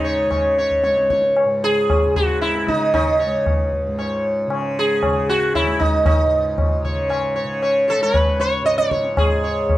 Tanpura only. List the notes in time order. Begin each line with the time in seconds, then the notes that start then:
Already playing: C#2 G#2 C#3
0.24 C#3
0.84 C#2
1.44 G#2
2.06 C#3
2.66 C#3
3.26 C#2
3.87 G#2
4.47 C#3
5.06 C#3
5.66 C#2
6.25 G#2
6.84 C#3
7.44 C#3
8.02 C#2
8.62 G#2
9.18 G#2